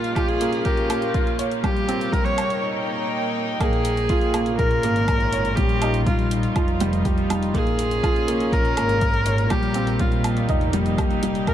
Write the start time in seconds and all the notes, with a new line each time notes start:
Already playing: A#2 A#3 D#4 F4
0.04 C#4, closed hi-hat
0.15 F4 G4, kick, closed hi-hat, low woodblock
0.28 G#4, closed hi-hat
0.41 A#3, closed hi-hat
0.53 closed hi-hat
0.65 G4 A#4, kick, closed hi-hat
0.77 closed hi-hat
0.90 A#3, closed hi-hat, low woodblock
1.02 closed hi-hat
1.14 F4, kick, closed hi-hat
1.27 closed hi-hat
1.39 C#5, closed hi-hat
1.52 closed hi-hat
1.64 G3 G4, kick, closed hi-hat, low woodblock
1.77 closed hi-hat
1.88 C4, closed hi-hat
2.01 closed hi-hat
2.12 G3 A#4, kick, closed hi-hat
2.24 C#5, closed hi-hat
2.38 closed hi-hat, low woodblock
2.50 D#4 G5, closed hi-hat
3.60 A#1 A#2 A#3 G#4, kick, closed hi-hat, low woodblock
3.73 closed hi-hat
3.85 closed hi-hat
3.97 closed hi-hat
4.09 C#4 F4, kick, closed hi-hat
4.21 closed hi-hat
4.34 A#3, closed hi-hat, low woodblock
4.46 F4, closed hi-hat
4.58 A#1 A#4, kick, closed hi-hat
4.71 closed hi-hat
4.83 G#1 A#3, closed hi-hat
4.96 closed hi-hat
5.08 kick, closed hi-hat, low woodblock
5.20 closed hi-hat
5.33 C#5, closed hi-hat
5.45 closed hi-hat
5.56 A#1 G3 G4, kick, closed hi-hat
5.69 closed hi-hat
5.82 D#4, closed hi-hat, low woodblock
5.94 closed hi-hat
6.06 G3 F4, kick, closed hi-hat
6.19 closed hi-hat
6.31 D#4, closed hi-hat
6.43 closed hi-hat
6.56 F1 F4, kick, closed hi-hat, low woodblock
6.68 closed hi-hat
6.80 G3, closed hi-hat
6.93 closed hi-hat
7.05 G4, kick, closed hi-hat
7.18 closed hi-hat
7.30 G3, closed hi-hat, low woodblock
7.43 closed hi-hat
7.53 A#1 A#2 A#3 G#4, kick, closed hi-hat
7.67 closed hi-hat
7.79 closed hi-hat
7.90 C#4, closed hi-hat
8.03 F4, kick, closed hi-hat, low woodblock
8.11 A#3
8.16 closed hi-hat
8.28 A#3, closed hi-hat
8.40 closed hi-hat
8.52 A#1 A#4, kick, closed hi-hat
8.65 closed hi-hat
8.77 G#1 A#3, closed hi-hat, low woodblock
8.89 closed hi-hat
9.01 kick, closed hi-hat
9.14 closed hi-hat
9.26 C#5, closed hi-hat
9.38 closed hi-hat
9.50 A#1 G3 G4, kick, closed hi-hat, low woodblock
9.63 closed hi-hat
9.74 C4, closed hi-hat
9.84 G4, closed hi-hat
9.99 G3 F4, kick, closed hi-hat
10.09 D#4, closed hi-hat
10.24 closed hi-hat, low woodblock
10.37 closed hi-hat
10.49 F1 D#4, kick, closed hi-hat
10.61 closed hi-hat
10.73 G3, closed hi-hat
10.86 closed hi-hat
10.98 G4, kick, closed hi-hat, low woodblock
11.11 closed hi-hat
11.23 G3, closed hi-hat
11.35 closed hi-hat
11.47 A#1 A#3 A#4, kick, closed hi-hat, low woodblock